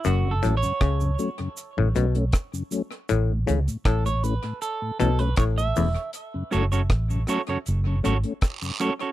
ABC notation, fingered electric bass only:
X:1
M:4/4
L:1/16
Q:1/4=79
K:F#m
V:1 name="Fingered electric bass" clef=bass
F,,,2 A,,, z C,,2 z3 A,,, B,,,2 z4 | A,,,2 C,, z A,,,3 z3 B,,,2 A,,,2 E,,, z | z2 F,,,2 A,,,2 z2 F,,,2 G,,, z4 z |]